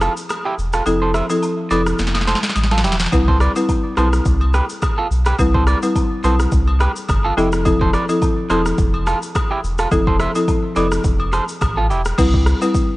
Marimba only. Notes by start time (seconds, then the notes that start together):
0.86 F3 C4 E4 A4
1.30 F3 C4 E4 A4
1.71 F3 C4 E4 A4
3.12 G3 C4 E4 B4
3.56 G3 C4 E4 B4
3.97 G3 C4 E4 B4
5.39 G3 C4 E4 B4
5.83 G3 C4 E4 B4
6.24 G3 C4 E4 B4
7.37 F3 C4 E4 A4
7.65 F3 C4 E4 A4
8.09 F3 C4 E4 A4
8.50 F3 C4 E4 A4
9.91 F3 C4 E4 A4
10.35 F3 C4 E4 A4
10.76 F3 C4 E4 A4
12.18 G3 C4 E4 B4
12.62 G3 C4 E4 B4